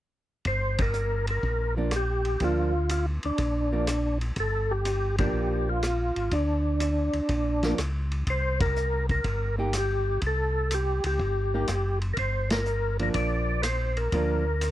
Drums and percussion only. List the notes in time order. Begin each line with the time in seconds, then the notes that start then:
0.45 kick, ride
0.78 kick, ride
0.93 hi-hat pedal
1.27 ride
1.43 kick
1.91 cross-stick, hi-hat pedal, ride
2.25 ride
2.40 kick, ride
2.89 hi-hat pedal, ride
3.23 ride
3.38 kick, ride
3.87 cross-stick, hi-hat pedal, ride
4.21 ride
4.36 kick, ride
4.85 hi-hat pedal, ride
5.18 kick, ride
5.83 cross-stick, hi-hat pedal, ride
6.16 ride
6.31 kick, ride
6.80 hi-hat pedal, ride
7.13 ride
7.29 kick, ride
7.63 snare, ride
7.78 cross-stick, hi-hat pedal, ride
8.12 ride
8.27 kick, ride
8.60 kick, ride
8.76 hi-hat pedal
9.09 kick, ride
9.24 kick, ride
9.73 cross-stick, hi-hat pedal, ride
10.22 kick, ride
10.71 hi-hat pedal, ride
11.04 ride
11.19 kick
11.68 cross-stick, hi-hat pedal, ride
12.02 ride
12.17 kick, ride
12.50 snare, ride
12.65 hi-hat pedal
12.99 ride
13.14 kick, ride
13.63 cross-stick, hi-hat pedal, ride
13.97 ride
14.12 kick, ride
14.61 hi-hat pedal, ride